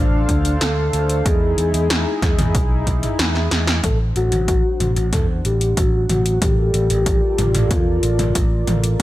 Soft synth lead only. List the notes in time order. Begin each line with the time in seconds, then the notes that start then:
Already playing: D4
0.61 A4
1.26 G#4
3.84 A4
4.16 F#4
5.13 A4
5.45 G4
5.77 F#4
6.10 F#4
6.42 G4
7.71 F4